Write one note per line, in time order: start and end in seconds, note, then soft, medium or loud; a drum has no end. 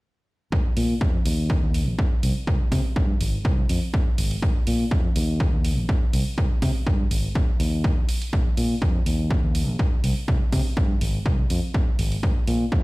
0.52 0.61 A#1 medium
0.52 kick loud
0.77 0.93 A#2 medium
0.77 open hi-hat medium
1.01 1.17 F2 medium
1.01 kick loud
1.25 1.56 D#2 medium
1.25 open hi-hat loud
1.50 kick loud
1.63 1.87 D#2 medium
1.74 open hi-hat medium
1.87 1.95 A#1 medium
1.99 kick loud
2.23 2.32 C2 medium
2.23 open hi-hat medium
2.47 2.56 C2 medium
2.47 kick loud
2.72 2.84 C3 medium
2.72 kick medium
2.72 open hi-hat medium
2.85 muted fingered electric bass stroke soft
2.96 3.12 G2 medium
2.96 kick loud
3.21 3.37 G#1 medium
3.21 open hi-hat loud
3.45 3.61 C2 medium
3.45 kick loud
3.69 3.78 F2 medium
3.69 open hi-hat loud
3.94 kick loud
4.18 4.35 G#1 medium
4.18 open hi-hat loud
4.31 open hi-hat medium
4.42 4.51 A#1 medium
4.42 kick loud
4.67 4.83 A#2 medium
4.67 open hi-hat loud
4.91 5.08 F2 medium
4.91 kick loud
5.16 5.46 D#2 medium
5.16 open hi-hat loud
5.40 kick loud
5.53 5.78 D#2 medium
5.65 open hi-hat loud
5.78 5.85 A#1 medium
5.89 kick loud
6.13 6.22 C2 medium
6.13 open hi-hat loud
6.38 6.46 C2 medium
6.38 kick loud
6.62 6.75 C3 medium
6.62 kick medium
6.62 open hi-hat loud
6.75 muted fingered electric bass stroke soft
6.87 7.03 G2 medium
6.87 kick loud
7.11 7.27 G#1 medium
7.11 open hi-hat loud
7.35 kick loud
7.60 7.90 D#2 medium
7.60 open hi-hat loud
7.84 kick loud
8.09 open hi-hat loud
8.22 open hi-hat medium
8.33 8.41 A#1 medium
8.33 kick loud
8.57 8.74 A#2 medium
8.57 open hi-hat medium
8.82 8.98 F2 medium
8.82 kick loud
9.06 9.36 D#2 medium
9.06 open hi-hat loud
9.31 kick loud
9.44 9.68 D#2 medium
9.55 open hi-hat loud
9.68 9.75 A#1 medium
9.79 kick loud
10.04 10.12 C2 medium
10.04 open hi-hat loud
10.28 10.36 C2 medium
10.28 kick loud
10.52 10.65 C3 medium
10.52 kick medium
10.52 open hi-hat medium
10.65 muted fingered electric bass stroke soft
10.77 10.93 G2 medium
10.77 kick loud
11.01 11.18 G#1 medium
11.01 open hi-hat loud
11.26 11.42 C2 loud
11.26 kick loud
11.50 11.58 F2 medium
11.50 open hi-hat medium
11.74 kick loud
11.99 12.15 G#1 medium
11.99 open hi-hat medium
12.12 open hi-hat medium
12.23 12.32 A#1 medium
12.23 kick loud
12.47 12.64 A#2 medium
12.47 open hi-hat medium
12.72 12.83 F2 medium
12.72 kick loud